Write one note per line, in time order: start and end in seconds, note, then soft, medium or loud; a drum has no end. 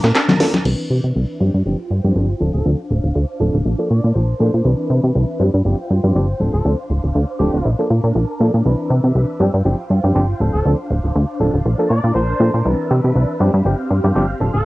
0.00 0.12 A#2 loud
0.00 0.63 D4 medium
0.00 0.64 A#4 medium
0.00 0.64 A5 medium
0.00 shaker soft
0.04 snare medium
0.04 closed hi-hat medium
0.15 snare medium
0.15 clap loud
0.15 closed hi-hat medium
0.15 shaker medium
0.29 snare medium
0.29 closed hi-hat soft
0.29 high conga medium
0.29 low conga medium
0.29 shaker soft
0.40 0.50 F3 medium
0.40 0.51 A#3 medium
0.40 0.51 D4 medium
0.40 0.51 A4 loud
0.40 snare loud
0.40 open hi-hat loud
0.40 shaker medium
0.54 snare medium
0.54 closed hi-hat medium
0.54 high conga medium
0.54 shaker soft
0.65 0.75 C2 medium
0.65 1.37 E3 medium
0.65 1.38 C4 medium
0.65 1.38 D4 medium
0.65 1.38 B4 medium
0.65 crash medium
0.90 1.00 C3 medium
1.04 1.12 C3 medium
1.16 1.25 C2 medium
1.40 1.50 G2 medium
1.40 1.50 F3 medium
1.40 1.50 C4 medium
1.40 1.51 D4 medium
1.40 2.39 F4 medium
1.40 1.51 G4 medium
1.40 3.63 C5 medium
1.40 2.39 G5 medium
1.54 1.62 G2 medium
1.65 1.75 G1 medium
1.65 1.75 F3 medium
1.65 1.76 C4 medium
1.65 1.76 D4 medium
1.65 1.76 G4 medium
1.90 2.00 G2 medium
2.04 2.12 G2 medium
2.04 2.14 F3 medium
2.04 2.14 C4 medium
2.04 2.14 D4 medium
2.04 2.14 G4 medium
2.15 2.34 G1 medium
2.15 2.25 F3 medium
2.15 2.26 C4 medium
2.15 2.26 D4 medium
2.15 2.26 G4 medium
2.40 2.50 D1 medium
2.40 2.50 F3 medium
2.40 2.50 C4 medium
2.40 5.37 D4 medium
2.40 2.51 D4 medium
2.40 2.51 A4 medium
2.40 3.64 F5 medium
2.54 2.62 D1 medium
2.54 2.68 A4 medium
2.65 2.75 D2 medium
2.65 2.75 F3 medium
2.65 2.75 C4 medium
2.65 2.76 D4 medium
2.65 2.76 A4 medium
2.91 3.00 D1 loud
3.04 3.12 D1 medium
3.15 3.25 D2 medium
3.40 3.50 D1 medium
3.40 3.56 F3 medium
3.40 3.56 C4 medium
3.40 3.56 D4 medium
3.40 3.56 A4 medium
3.54 3.63 D1 loud
3.65 3.75 A#1 medium
3.65 4.64 A#4 medium
3.65 4.64 A5 medium
3.79 3.87 F3 medium
3.79 3.87 A#3 medium
3.79 3.88 D4 medium
3.79 3.88 A4 medium
3.90 4.00 A#2 medium
3.90 4.13 D5 medium
4.04 4.12 A#2 medium
4.14 4.34 A#1 medium
4.14 4.65 C5 medium
4.40 4.50 A#2 medium
4.40 4.50 F3 medium
4.40 4.50 A#3 medium
4.40 4.50 D4 medium
4.40 4.51 A4 medium
4.54 4.62 A#2 medium
4.64 4.75 C2 medium
4.64 5.37 E3 medium
4.64 5.37 C4 medium
4.64 5.38 D4 medium
4.64 5.38 B4 medium
4.90 5.00 C3 loud
5.04 5.12 C3 medium
5.15 5.25 C2 medium
5.40 5.50 G2 medium
5.40 5.50 F3 medium
5.40 5.50 C4 medium
5.40 5.50 D4 medium
5.40 6.39 F4 medium
5.40 5.50 G4 medium
5.40 7.63 C5 medium
5.40 6.39 G5 medium
5.54 5.62 G2 medium
5.65 5.75 G1 medium
5.65 5.75 F3 medium
5.65 5.75 C4 medium
5.65 5.76 D4 medium
5.65 5.76 G4 medium
5.90 6.00 G2 medium
6.03 6.12 G2 loud
6.03 6.13 F3 medium
6.03 6.13 C4 medium
6.03 6.14 D4 medium
6.03 6.14 G4 medium
6.15 6.34 G1 medium
6.15 6.25 F3 medium
6.15 6.25 C4 medium
6.15 6.25 D4 medium
6.15 6.26 G4 medium
6.40 6.50 D1 medium
6.40 6.50 F3 medium
6.40 6.50 C4 medium
6.40 6.50 D4 medium
6.40 9.38 D4 medium
6.40 6.51 A4 medium
6.40 7.64 F5 medium
6.53 6.62 D1 medium
6.53 6.68 A4 medium
6.65 6.75 D2 medium
6.65 6.75 F3 medium
6.65 6.75 C4 medium
6.65 6.76 D4 medium
6.65 6.76 A4 medium
6.90 7.00 D1 loud
7.04 7.12 D1 medium
7.15 7.25 D2 medium
7.39 7.50 D1 medium
7.39 7.56 F3 medium
7.39 7.56 C4 medium
7.39 7.56 D4 medium
7.39 7.70 G4 medium
7.39 7.56 A4 medium
7.54 7.62 D1 medium
7.65 7.75 A#1 medium
7.65 8.64 A#4 medium
7.65 8.64 A5 medium
7.79 7.87 F3 medium
7.79 7.87 A#3 medium
7.79 7.88 D4 medium
7.79 7.88 A4 medium
7.90 8.00 A#2 medium
8.04 8.12 A#2 loud
8.15 8.25 A#1 medium
8.40 8.50 A#2 medium
8.40 8.50 F3 medium
8.40 8.50 A#3 medium
8.40 8.50 D4 medium
8.40 8.51 A4 medium
8.54 8.62 A#2 medium
8.65 8.75 C2 medium
8.65 9.37 E3 medium
8.65 9.38 C4 medium
8.65 9.38 D4 medium
8.65 9.38 B4 medium
8.90 9.00 C3 loud
9.04 9.12 C3 medium
9.15 9.25 C2 medium
9.40 9.50 G2 medium
9.40 9.50 F3 medium
9.40 9.50 C4 medium
9.40 9.50 D4 medium
9.40 10.39 F4 medium
9.40 9.51 G4 medium
9.40 11.63 C5 medium
9.40 10.39 G5 medium
9.54 9.62 G2 medium
9.65 9.75 G1 medium
9.65 9.75 F3 medium
9.65 9.75 C4 medium
9.65 9.75 D4 medium
9.65 9.76 G4 medium
9.90 10.00 G2 medium
10.03 10.12 G2 medium
10.03 10.13 F3 medium
10.03 10.14 C4 medium
10.03 10.14 D4 medium
10.03 10.14 G4 medium
10.15 10.34 G1 medium
10.15 10.25 F3 medium
10.15 10.25 C4 medium
10.15 10.25 D4 medium
10.15 10.26 G4 medium
10.40 10.50 D1 medium
10.40 10.50 F3 medium
10.40 10.50 C4 medium
10.40 13.38 D4 medium
10.40 10.51 D4 medium
10.40 10.51 A4 medium
10.40 11.64 F5 medium
10.53 10.62 D1 medium
10.53 10.68 A4 medium
10.65 10.75 D2 medium
10.65 10.75 F3 medium
10.65 10.75 C4 medium
10.65 10.76 D4 medium
10.65 10.76 A4 medium
10.90 11.00 D1 loud
11.04 11.12 D1 medium
11.15 11.25 D2 loud
11.40 11.50 D1 medium
11.40 11.56 F3 medium
11.40 11.56 C4 medium
11.40 11.56 D4 medium
11.40 11.56 A4 medium
11.54 11.62 D1 loud
11.65 11.75 A#1 medium
11.65 12.65 A#4 medium
11.65 12.64 A5 medium
11.79 11.87 F3 medium
11.79 11.87 A#3 medium
11.79 11.88 D4 medium
11.79 11.88 A4 medium
11.90 12.00 A#2 medium
11.90 12.13 D5 medium
12.04 12.12 A#2 loud
12.15 12.34 A#1 medium
12.15 12.65 C5 medium
12.40 12.50 A#2 loud
12.40 12.50 F3 medium
12.40 12.51 A#3 medium
12.40 12.51 D4 medium
12.40 12.51 A4 medium
12.54 12.62 A#2 medium
12.65 12.75 C2 medium
12.65 13.37 E3 medium
12.65 13.38 C4 medium
12.65 13.38 D4 medium
12.65 13.38 B4 medium
12.91 13.00 C3 loud
13.04 13.12 C3 medium
13.15 13.25 C2 loud
13.40 13.50 G2 loud
13.40 13.50 F3 medium
13.40 13.50 C4 medium
13.40 14.39 C4 medium
13.40 13.50 D4 medium
13.40 14.39 G4 medium
13.40 13.51 G4 medium
13.40 14.65 F5 medium
13.54 13.62 G2 loud
13.65 13.75 G1 medium
13.65 13.75 F3 medium
13.65 13.75 C4 medium
13.65 13.76 D4 medium
13.65 13.76 G4 medium
13.90 14.00 G2 medium
14.04 14.12 G2 medium
14.04 14.14 F3 medium
14.04 14.14 C4 medium
14.04 14.14 D4 medium
14.04 14.14 G4 medium
14.15 14.34 G1 medium
14.15 14.25 F3 medium
14.15 14.26 C4 medium
14.15 14.26 D4 medium
14.15 14.26 G4 medium
14.40 14.50 D1 loud
14.40 14.51 F3 medium
14.40 14.51 C4 medium
14.40 14.65 D4 medium
14.40 14.51 D4 medium
14.40 14.51 A4 medium
14.40 14.65 C5 medium
14.54 14.62 D1 medium
14.54 14.65 A4 medium